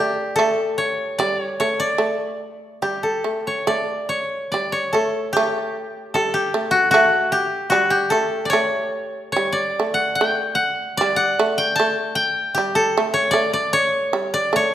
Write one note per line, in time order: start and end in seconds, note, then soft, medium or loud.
0.00 0.37 A3 medium
0.00 2.02 G4 medium
0.00 0.35 A4 medium
0.00 0.84 D5 medium
0.36 1.19 A3 medium
0.36 2.26 A4 medium
0.78 1.25 C#5 medium
1.19 1.59 G3 medium
1.19 1.41 D5 medium
1.41 1.60 C#5 medium
1.60 1.97 A3 medium
1.60 1.86 C#5 medium
1.80 3.40 D5 medium
1.98 2.82 A3 medium
2.82 3.24 G3 medium
2.82 4.86 G4 medium
3.03 4.92 A4 medium
3.24 3.66 A3 medium
3.47 3.73 C#5 medium
3.67 4.52 A3 medium
3.67 4.15 D5 medium
4.09 4.58 C#5 medium
4.52 4.94 G3 medium
4.52 4.78 D5 medium
4.72 6.38 C#5 medium
4.93 5.35 A3 medium
4.93 6.14 A4 medium
5.33 6.15 A3 loud
5.33 6.33 G4 medium
6.14 6.54 G3 medium
6.14 8.04 A4 medium
6.34 6.77 G4 medium
6.54 6.93 A3 medium
6.71 6.90 F#4 loud
6.91 7.72 A3 loud
6.91 7.38 F#4 loud
7.32 7.76 G4 medium
7.70 8.12 G3 medium
7.70 7.96 F#4 medium
7.90 10.00 G4 medium
8.10 8.52 A3 medium
8.10 10.00 A4 medium
8.45 8.56 D5 medium
8.50 9.35 A3 medium
8.50 9.32 C#5 loud
9.32 9.59 C#5 medium
9.36 9.77 G3 medium
9.53 10.97 D5 medium
9.80 10.19 A3 medium
9.94 10.21 F#5 medium
10.15 10.61 G5 medium
10.21 11.01 A3 medium
10.55 11.16 F#5 medium
10.97 11.39 G3 medium
10.97 12.57 D5 medium
11.16 11.64 F#5 medium
11.39 11.78 A3 medium
11.58 12.15 G5 medium
11.76 12.57 A3 medium
11.76 13.01 A5 loud
12.15 13.50 G5 loud
12.55 12.96 G3 medium
12.55 14.59 G4 medium
12.75 14.66 A4 loud
12.98 13.32 A3 medium
13.14 13.37 C#5 loud
13.31 14.13 A3 loud
13.31 13.53 D5 loud
13.53 13.79 D5 medium
13.73 14.40 C#5 loud
14.13 14.52 G3 medium
14.34 14.62 D5 loud
14.53 14.74 A3 medium
14.53 14.74 C#5 medium